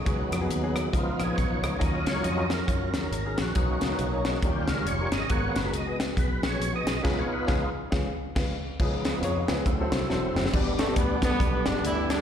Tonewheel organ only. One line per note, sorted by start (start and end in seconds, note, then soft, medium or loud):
0.05 0.89 F#3 soft
0.05 0.89 B3 soft
0.05 0.30 C#4 medium
0.05 0.90 D#4 medium
0.93 1.76 F3 medium
0.93 1.77 B3 soft
0.93 1.77 D#4 medium
0.93 1.23 F4 medium
1.23 1.38 G#4 medium
1.36 1.64 C#5 medium
1.65 1.81 C#5 medium
1.79 2.46 F#3 soft
1.79 2.46 C#4 medium
1.79 2.47 F4 medium
1.79 2.07 D#5 medium
2.08 2.24 C#5 medium
2.23 2.51 D#5 loud
2.54 2.94 A#4 medium
2.67 2.91 F#3 soft
2.67 2.92 C#4 soft
2.67 2.91 F4 soft
2.98 3.38 A#4 medium
3.42 4.04 F#4 medium
3.56 4.39 A#3 medium
3.56 4.40 C#4 soft
3.56 4.39 D#4 medium
4.26 4.42 F#4 medium
4.44 5.10 G3 medium
4.44 5.10 C#4 soft
4.44 5.11 F4 medium
4.44 4.71 G4 medium
4.69 4.88 A#4 medium
4.88 5.12 C#5 medium
5.13 5.31 D#5 medium
5.30 5.62 A#3 medium
5.30 5.62 B3 soft
5.30 5.62 F#4 medium
5.30 5.55 C#5 medium
5.57 5.73 B4 medium
5.75 5.99 D#5 medium
6.19 6.45 B4 medium
6.46 6.74 C#5 medium
6.76 7.03 D#5 loud
7.03 7.70 B3 medium
7.03 7.70 D#4 soft
7.03 7.70 F4 medium
7.03 7.19 B4 medium
7.19 7.34 C#5 medium
7.33 7.55 B4 medium
8.80 9.63 F3 medium
8.80 9.63 B3 medium
8.80 9.63 D#4 medium
9.65 10.49 F#3 medium
9.65 10.49 C4 soft
9.65 10.49 E4 medium
10.53 12.21 G3 medium
10.53 12.21 B3 medium
10.53 12.21 D4 medium